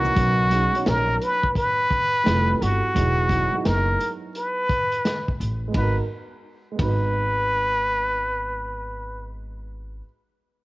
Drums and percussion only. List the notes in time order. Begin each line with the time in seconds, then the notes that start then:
0.05 high conga, maracas
0.16 kick, closed hi-hat
0.51 closed hi-hat
0.75 closed hi-hat
0.86 snare, closed hi-hat
1.22 closed hi-hat
1.43 kick
1.55 kick, closed hi-hat
1.91 kick, closed hi-hat
2.26 snare, closed hi-hat
2.62 closed hi-hat
2.96 kick, closed hi-hat
3.29 kick, closed hi-hat
3.65 snare, closed hi-hat
4.01 closed hi-hat
4.35 closed hi-hat
4.69 kick, closed hi-hat
4.92 closed hi-hat
5.05 snare, closed hi-hat
5.28 kick
5.41 closed hi-hat
5.74 kick, ride
6.79 kick, ride